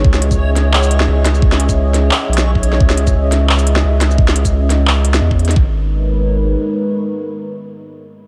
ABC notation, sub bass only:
X:1
M:4/4
L:1/8
Q:"Swing 16ths" 1/4=174
K:G#m
V:1 name="Sub bass" clef=bass
C,,2 C,,4 C,,2- | C,,4 z B,,,3 | C,,2 C,,4 C,,2- | C,,4 C,,2 E,,2 |
G,,,6 z2 | z8 |]